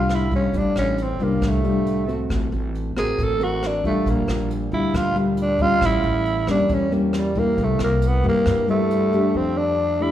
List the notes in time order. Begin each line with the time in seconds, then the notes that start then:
Already playing: C2 A2 G3 D4 F4
0.09 cross-stick, closed hi-hat
0.15 E4
0.31 G3 D4 F4, kick, closed hi-hat
0.36 C#4
0.53 A1 A2 G3 D4 F4, kick, closed hi-hat
0.58 D4
0.76 A1 C#4, cross-stick, closed hi-hat
0.98 closed hi-hat
1.03 C4
1.19 C2 G3 D4 F4, closed hi-hat
1.23 A#3
1.41 C2 A2, kick, cross-stick, closed hi-hat
1.48 A3
1.63 G3 D4 F4, closed hi-hat
1.86 closed hi-hat
2.07 C4 F#4, closed hi-hat
2.29 A1 A3, kick, cross-stick, closed hi-hat
2.52 A1, closed hi-hat
2.75 closed hi-hat
2.96 A1 C4 F#4 G#4 A#4, cross-stick, closed hi-hat
3.18 A1, kick, closed hi-hat
3.24 A4
3.39 C4 F#4 A#4, closed hi-hat
3.44 F#4
3.63 cross-stick, closed hi-hat
3.67 D4
3.84 G3 A3 D4 F4, kick, closed hi-hat
4.06 A#1 A#2 A#3, kick, closed hi-hat
4.28 A#1, cross-stick, closed hi-hat
4.50 closed hi-hat
4.72 D2 G3 D4 E4 F4, closed hi-hat
4.94 D2 A#2 F4, kick, cross-stick, closed hi-hat
5.15 G3 A3 D4 F4, closed hi-hat
5.37 closed hi-hat
5.42 D4
5.59 G3 C#4 F4, kick, closed hi-hat
5.81 A1 A2, kick, cross-stick, closed hi-hat
5.86 E4
6.03 A1, closed hi-hat
6.25 closed hi-hat
6.47 E2 G3 A#3 C#4 D4, cross-stick, closed hi-hat
6.69 E2 E3, kick, closed hi-hat
6.74 C#4
6.91 E3 G3 A#3 C#4, closed hi-hat
7.13 cross-stick, closed hi-hat
7.18 G3
7.35 G3 A#3 E4, kick, closed hi-hat
7.57 C2 C3, kick, closed hi-hat
7.64 A3
7.79 C2, cross-stick, closed hi-hat
7.84 A#3
8.02 closed hi-hat
8.08 B3
8.23 G2 G3 A#3 E4, closed hi-hat
8.29 A#3
8.46 G2, kick, cross-stick, closed hi-hat
8.68 G3 A3 E4, closed hi-hat
8.91 closed hi-hat
9.12 A3 D4 G4, closed hi-hat
9.34 F2 F3 C4
9.58 D4
10.00 A3 D4 E4 G4